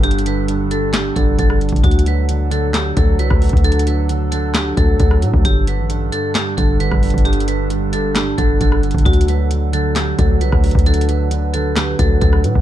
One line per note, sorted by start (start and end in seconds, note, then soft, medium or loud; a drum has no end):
0.00 1.12 G1 loud
0.00 0.04 G2 medium
0.00 0.47 G2 medium
0.00 0.26 D3 medium
0.00 1.80 G3 medium
0.00 1.80 D4 medium
0.00 0.21 G4 loud
0.00 1.80 A4 medium
0.00 closed hi-hat medium
0.11 closed hi-hat medium
0.19 closed hi-hat medium
0.26 1.15 D3 medium
0.26 0.44 B4 medium
0.26 closed hi-hat medium
0.48 0.70 G2 medium
0.48 closed hi-hat medium
0.71 0.93 G2 medium
0.71 0.88 A4 medium
0.71 closed hi-hat medium
0.94 1.84 G2 medium
0.94 1.11 G4 medium
0.94 snare loud
0.94 clap loud
0.94 closed hi-hat medium
1.16 1.38 G1 loud
1.16 1.38 D3 medium
1.16 1.33 A4 medium
1.16 kick loud
1.16 closed hi-hat medium
1.39 1.71 G1 loud
1.39 1.60 D3 medium
1.39 1.56 A4 medium
1.39 kick loud
1.39 closed hi-hat medium
1.50 cross-stick loud
1.61 1.82 D3 medium
1.61 closed hi-hat soft
1.69 1.83 G1 loud
1.69 kick loud
1.69 closed hi-hat soft
1.76 closed hi-hat medium
1.84 2.93 D2 loud
1.84 2.28 D3 medium
1.84 5.41 F#3 medium
1.84 5.41 D4 medium
1.84 2.01 F#4 loud
1.84 10.82 A4 loud
1.84 kick loud
1.84 closed hi-hat medium
1.91 closed hi-hat medium
1.99 closed hi-hat medium
2.06 2.95 F#3 medium
2.06 2.24 B4 medium
2.06 closed hi-hat medium
2.29 2.49 D3 medium
2.29 closed hi-hat medium
2.50 2.72 D3 medium
2.50 2.69 A4 medium
2.50 closed hi-hat medium
2.74 3.63 D3 medium
2.74 2.91 G4 medium
2.74 snare loud
2.74 clap loud
2.74 closed hi-hat medium
2.97 3.21 D2 loud
2.97 3.18 F#3 medium
2.97 3.14 A4 medium
2.97 kick loud
2.97 closed hi-hat medium
3.19 3.30 C2 loud
3.19 3.40 F#3 medium
3.19 3.62 B4 medium
3.19 closed hi-hat medium
3.30 3.52 D2 loud
3.30 kick loud
3.30 cross-stick loud
3.42 3.85 F#3 medium
3.42 closed hi-hat soft
3.42 open hi-hat medium
3.49 4.73 D2 loud
3.49 kick loud
3.49 closed hi-hat soft
3.57 closed hi-hat medium
3.64 4.08 D3 medium
3.64 3.82 A4 loud
3.64 closed hi-hat medium
3.72 closed hi-hat medium
3.79 closed hi-hat medium
3.87 4.75 F#3 medium
3.87 4.04 B4 medium
3.87 closed hi-hat medium
4.09 4.31 D3 medium
4.09 closed hi-hat medium
4.32 4.53 D3 medium
4.32 4.49 A4 medium
4.32 closed hi-hat medium
4.55 5.45 D3 medium
4.55 4.72 G4 medium
4.55 snare loud
4.55 clap loud
4.55 closed hi-hat medium
4.77 4.99 D2 loud
4.77 4.98 F#3 medium
4.77 4.94 A4 medium
4.77 kick loud
4.77 closed hi-hat medium
4.99 5.24 D2 loud
4.99 5.21 F#3 medium
4.99 5.17 A4 medium
4.99 kick loud
4.99 closed hi-hat medium
5.11 cross-stick loud
5.22 5.33 A2 loud
5.22 5.45 F#3 medium
5.22 closed hi-hat medium
5.34 5.44 D2 loud
5.34 kick loud
5.44 5.80 G1 loud
5.44 5.88 G2 medium
5.44 9.02 G3 medium
5.44 9.02 D4 medium
5.44 5.62 G4 loud
5.44 kick loud
5.44 closed hi-hat medium
5.67 6.56 D3 medium
5.67 5.85 B4 medium
5.67 closed hi-hat medium
5.79 6.11 A1 loud
5.90 6.11 G2 medium
5.90 closed hi-hat medium
6.12 6.33 G2 medium
6.12 6.29 A4 medium
6.12 closed hi-hat medium
6.35 7.24 G2 medium
6.35 6.52 G4 medium
6.35 snare loud
6.35 clap loud
6.35 closed hi-hat medium
6.57 6.90 G1 loud
6.57 6.79 D3 medium
6.57 6.75 A4 medium
6.57 kick loud
6.57 closed hi-hat medium
6.80 7.01 D3 medium
6.80 7.23 B4 medium
6.80 closed hi-hat medium
6.92 7.13 G1 loud
6.92 kick loud
6.92 cross-stick loud
7.03 7.46 D3 medium
7.03 closed hi-hat soft
7.03 open hi-hat medium
7.10 8.34 G1 loud
7.10 kick loud
7.10 closed hi-hat medium
7.18 closed hi-hat medium
7.25 7.69 G2 medium
7.25 7.42 G4 loud
7.25 closed hi-hat medium
7.33 closed hi-hat medium
7.40 closed hi-hat medium
7.48 8.36 D3 medium
7.48 7.65 B4 medium
7.48 closed hi-hat medium
7.70 7.92 G2 medium
7.70 closed hi-hat medium
7.93 8.14 G2 medium
7.93 8.10 A4 medium
7.93 closed hi-hat medium
8.15 9.06 G2 medium
8.15 8.33 G4 medium
8.15 snare loud
8.15 clap loud
8.15 closed hi-hat medium
8.38 8.60 G1 loud
8.38 8.60 D3 medium
8.38 8.55 A4 medium
8.38 kick loud
8.38 closed hi-hat medium
8.61 8.93 G1 loud
8.61 8.81 D3 medium
8.61 8.78 A4 medium
8.61 kick loud
8.61 closed hi-hat medium
8.72 cross-stick loud
8.83 9.04 D3 medium
8.83 closed hi-hat soft
8.91 9.05 G1 loud
8.91 kick loud
8.91 closed hi-hat medium
8.98 closed hi-hat medium
9.05 10.15 D2 loud
9.05 9.50 D3 medium
9.05 12.61 F#3 medium
9.05 12.61 D4 medium
9.05 9.23 F#4 loud
9.05 kick loud
9.05 closed hi-hat medium
9.13 closed hi-hat medium
9.21 closed hi-hat medium
9.28 10.17 F#3 medium
9.28 9.46 B4 medium
9.28 closed hi-hat medium
9.51 9.71 D3 medium
9.51 closed hi-hat medium
9.72 9.94 D3 medium
9.72 9.91 A4 medium
9.72 closed hi-hat medium
9.96 10.85 D3 medium
9.96 10.13 G4 medium
9.96 snare loud
9.96 clap loud
9.96 closed hi-hat loud
10.19 10.42 D2 loud
10.19 10.40 F#3 medium
10.19 10.36 A4 medium
10.19 kick loud
10.19 closed hi-hat medium
10.41 10.52 C2 loud
10.41 10.62 F#3 medium
10.41 10.84 B4 medium
10.41 closed hi-hat medium
10.52 10.74 D2 loud
10.52 kick loud
10.52 cross-stick loud
10.64 11.07 F#3 medium
10.64 closed hi-hat soft
10.64 open hi-hat medium
10.71 11.95 D2 loud
10.71 kick loud
10.71 closed hi-hat medium
10.79 closed hi-hat medium
10.86 11.30 D3 medium
10.86 11.04 A4 loud
10.86 12.61 B4 medium
10.86 closed hi-hat medium
10.94 closed hi-hat medium
11.01 closed hi-hat medium
11.08 11.97 F#3 medium
11.08 11.26 B4 medium
11.08 closed hi-hat medium
11.31 11.53 D3 medium
11.31 closed hi-hat medium
11.54 11.75 D3 medium
11.54 11.71 A4 medium
11.54 closed hi-hat medium
11.76 12.61 D3 medium
11.76 11.94 G4 medium
11.76 snare loud
11.76 clap loud
11.76 closed hi-hat medium
11.99 12.21 D2 loud
11.99 12.20 F#3 medium
11.99 12.16 A4 medium
11.99 kick loud
11.99 closed hi-hat medium
12.21 12.46 D2 loud
12.21 12.43 F#3 medium
12.21 12.39 A4 medium
12.21 kick loud
12.21 closed hi-hat medium
12.33 cross-stick loud
12.44 12.55 A2 loud
12.44 12.61 F#3 medium
12.44 closed hi-hat medium
12.55 12.61 D2 loud
12.55 kick loud